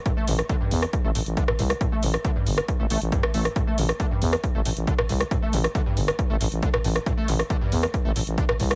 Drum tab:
HH |x-oxx-oxx-oxx-ox|x-oxx-oxx-oxx-ox|x-oxx-oxx-oxx-ox|x-oxx-oxx-oxx-ox|
SD |---r---r-----r-r|---r---r-----r-r|---r---r-----r-r|---r---r-----r-r|
BD |o---o---o---o---|o---o---o---o---|o---o---o---o---|o---o---o---o---|

HH |x-oxx-oxx-oxx-ox|
SD |---r---r-----r-r|
BD |o---o---o---o---|